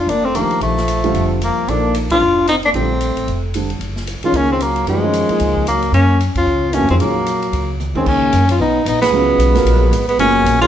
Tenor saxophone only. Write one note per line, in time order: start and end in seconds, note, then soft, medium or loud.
0.00 0.11 F4 medium
0.09 0.26 D4 medium
0.25 0.37 C4 medium
0.36 0.62 A#3 medium
0.63 1.38 A3 medium
1.44 1.71 A#3 medium
1.69 1.95 D4 medium
2.11 2.46 F4 medium
2.49 2.56 D#4 medium
2.65 2.70 D4 medium
2.76 3.51 C4 medium
4.25 4.38 F4 medium
4.37 4.51 C#4 medium
4.52 4.64 C4 medium
4.63 4.88 A#3 medium
4.89 5.64 G#3 medium
5.68 5.92 A#3 medium
5.94 6.19 C#4 medium
6.38 6.76 F4 medium
6.74 6.89 C#4 medium
6.90 6.95 C4 medium
7.01 7.76 A#3 medium
7.97 8.10 C4 medium
8.08 8.49 C#4 medium
8.51 8.60 F4 medium
8.62 8.85 D#4 medium
8.88 9.01 D#4 medium
9.02 10.04 B3 medium
10.09 10.18 B3 medium
10.20 10.59 C#4 medium
10.61 10.66 F4 medium